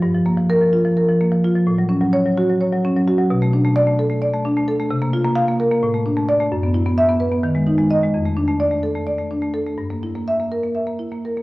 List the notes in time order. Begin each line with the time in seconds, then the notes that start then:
0.02 G2
0.14 F3
0.26 A#3
0.38 F3
0.50 A#4
0.61 F3
0.73 F4
0.85 F3
0.97 A#4
1.08 F3
1.20 A#3
1.31 F3
1.44 F4
1.55 F3
1.67 A2
1.78 F#3
1.89 C#4
2.01 F#3
2.13 C#5
2.26 F#3
2.38 F#4
2.50 F#3
2.61 C#5
2.72 F#3
2.85 C#4
2.96 F#3
3.08 F#4
3.18 F#3
3.30 B2
3.42 A3
3.53 D4
3.65 A3
3.76 D5
3.87 A3
3.99 A4
4.10 A3
4.22 D5
4.33 A3
4.45 D4
4.57 A3
4.68 A4
4.80 A3
4.91 C3
5.02 A#3
5.13 F4
5.24 A#3
5.36 F5
5.48 A#3
5.60 A#4
5.72 A#3
5.83 A2
5.94 A3
6.06 D4
6.17 A3
6.29 D5
6.40 A3
6.52 F#2
6.64 B3
6.75 E4
6.86 B3
6.98 E5
7.09 B3
7.20 B4
7.32 B3
7.43 D#3
7.55 G#3
7.67 D#4
7.78 G#3
7.90 D#5
8.03 G#3
8.14 F2
8.25 A3
8.37 D4
8.48 A3
8.60 D5
8.71 A3
8.83 A4
8.95 A3
9.07 D5
9.18 A3
9.31 D4
9.42 A3
9.54 A4
9.66 A3
9.78 G2
9.90 A#3
10.03 E4
10.15 A#3
10.28 E5
10.40 A#3
10.52 A#4
10.64 A#3
10.75 E5
10.87 A#3
10.99 E4
11.12 A#3
11.25 A#4
11.37 A#3